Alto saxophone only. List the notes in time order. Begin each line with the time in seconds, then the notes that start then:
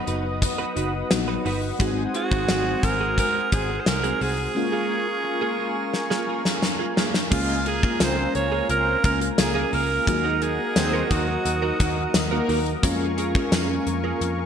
2.15 F#4
2.84 A#4
3.19 A#4
3.53 G#4
3.80 C5
3.87 A#4
4.22 G#4
7.33 F4
7.67 G#4
8.02 C5
8.36 C#5
8.70 A#4
9.05 A#4
9.39 G#4
9.74 A#4
10.08 A#4
10.43 G#4
11.12 F#4